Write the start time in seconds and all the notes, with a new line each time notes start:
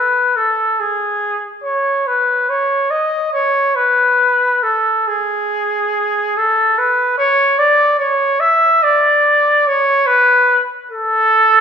Already playing: B4
0.36 A4
0.80 G#4
1.64 C#5
2.07 B4
2.49 C#5
2.91 D#5
3.33 C#5
3.76 B4
4.63 A4
5.08 G#4
6.37 A4
6.78 B4
7.18 C#5
7.59 D5
7.99 C#5
8.40 E5
8.83 D5
9.67 C#5
10.06 B4
10.91 A4